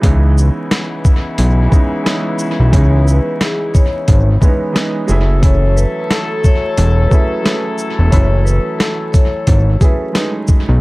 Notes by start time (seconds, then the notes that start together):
0.01 C#2 C#3 E3 G#3 B3 C#4 E4, kick, closed hi-hat
0.06 D#4
0.38 shaker
0.71 snare, closed hi-hat
1.05 kick, shaker
1.38 B1, closed hi-hat
1.68 E3 G#3 B3 C#4, kick
1.72 D#4, shaker
2.03 E3 G#3 B3 C#4, snare, closed hi-hat
2.08 D#4
2.39 shaker
2.60 B1
2.70 C#2 E3 G#3 B3 C#4 C#5, kick, closed hi-hat
2.75 D#4
3.04 B4, shaker
3.41 G#4, snare, closed hi-hat
3.74 C#5, kick, shaker
4.08 G#1, kick, closed hi-hat
4.41 E3 G#3 B3 C#4 B4, kick, shaker
4.46 D#4
4.73 E3 G#3 B3 C#4, snare, closed hi-hat
4.77 D#4
5.07 F#1 F#3 A3 C#4 E4 G#4 A4, shaker
5.11 E4
5.40 E3 F#3 A3 C#4 C#5, kick, closed hi-hat
5.44 E4
5.76 B4, shaker
6.11 A4, snare, closed hi-hat
6.44 C#5, kick, shaker
6.78 E1, closed hi-hat
7.07 F#3 G#4 B4
7.11 A3 C#4 E4, kick, shaker
7.42 F#3 A3 C#4 G#4, snare, closed hi-hat
7.47 E4
7.78 shaker
7.99 E1
8.09 F#1 E3 F#3 A3 C#4 C#5, kick, closed hi-hat
8.13 E4
8.45 B4, shaker
8.79 A4, snare, closed hi-hat
9.12 C#5, kick, closed hi-hat, shaker
9.47 G#1, kick, closed hi-hat
9.80 F#3 A3 C#4 G#4 B4, kick, closed hi-hat, shaker
9.85 E4
10.12 F#3 G#3 A3 C#4, snare, closed hi-hat
10.17 D#4
10.48 kick, shaker
10.69 B1